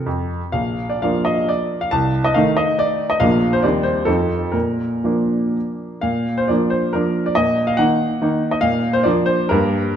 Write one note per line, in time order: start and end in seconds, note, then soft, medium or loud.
0.00 0.30 A4 soft
0.06 0.39 F2 soft
0.52 1.01 A#1 soft
0.52 0.89 F5 medium
0.89 1.02 D5 medium
1.02 1.87 F3 soft
1.02 1.88 A#3 soft
1.02 1.88 D4 soft
1.02 1.26 F5 medium
1.25 1.48 D#5 medium
1.49 1.81 D5 medium
1.81 1.91 F5 medium
1.91 2.34 C2 medium
1.91 2.23 A5 medium
2.25 2.35 D#5 medium
2.34 3.17 D#3 soft
2.34 3.17 A3 soft
2.34 3.17 D#4 soft
2.34 2.58 F5 medium
2.57 2.79 D#5 medium
2.79 3.10 D5 medium
3.10 3.20 D#5 medium
3.20 3.62 A#1 medium
3.20 3.59 F3 soft
3.20 3.60 A#3 soft
3.20 3.60 D4 soft
3.20 3.52 F5 medium
3.53 3.64 C5 medium
3.62 4.06 D#2 medium
3.62 4.04 G3 soft
3.62 4.04 C4 soft
3.62 4.04 D#4 soft
3.62 3.85 D5 medium
3.83 4.06 C5 medium
4.05 4.52 F2 soft
4.05 4.50 F3 soft
4.05 4.50 C4 soft
4.05 4.50 D#4 soft
4.05 4.53 A4 medium
4.52 5.03 A#2 soft
4.52 5.54 A#4 soft
5.04 5.99 F3 soft
5.04 5.99 A#3 soft
5.04 6.00 D4 soft
6.01 6.48 A#2 soft
6.01 6.37 F5 medium
6.38 6.49 C5 medium
6.48 6.91 F3 soft
6.48 6.91 A#3 soft
6.48 6.91 D4 soft
6.48 6.72 D5 medium
6.70 6.93 C5 medium
6.93 7.32 F3 soft
6.93 7.32 A#3 soft
6.93 7.33 D4 soft
6.93 7.25 A#4 medium
7.26 7.36 D5 medium
7.35 7.77 A#2 medium
7.35 7.67 D#5 medium
7.67 7.78 F5 medium
7.77 8.17 D#3 soft
7.77 8.18 A#3 soft
7.77 8.18 D#4 soft
7.77 8.51 F#5 medium
8.22 8.58 D#3 soft
8.22 8.58 A#3 soft
8.22 8.59 D#4 medium
8.51 8.62 D#5 medium
8.61 9.05 A#2 medium
8.61 8.94 F5 medium
8.93 9.05 C5 medium
9.03 9.48 F3 medium
9.03 9.48 A#3 soft
9.03 9.48 D4 medium
9.03 9.28 D5 medium
9.26 9.51 C5 medium
9.49 9.96 G2 medium
9.49 9.94 G3 soft
9.49 9.95 A#3 soft
9.49 9.95 D4 soft
9.49 9.95 A#4 medium